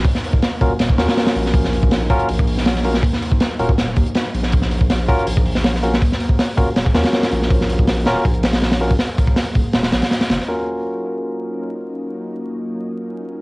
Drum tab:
HH |o-o-o-o-o-ooooo-|o-o-o-oxo-o-o-o-|o-o-o-o-o-oxo-o-|o-o-o-oxo-o-o-o-|
SD |-o--o---o-oooo-o|-o--o------ooo-o|-o--o---o---o--o|-o--o------ooo-o|
BD |o--o--o--o------|o--o--o--o------|o--o---o--o-----|o--o--o--o------|

HH |o-o-o-o-o-ooooo-|o-o-o-o-oxoooo-o|o-o-o-o-ooooooo-|----------------|
SD |-o--o---o-oooo-o|-o--o-o---oooo--|o---o---oooooooo|----------------|
BD |o--o--o--o------|o--o----o------o|--oo--o---------|----------------|

HH |----------------|
SD |----------------|
BD |----------------|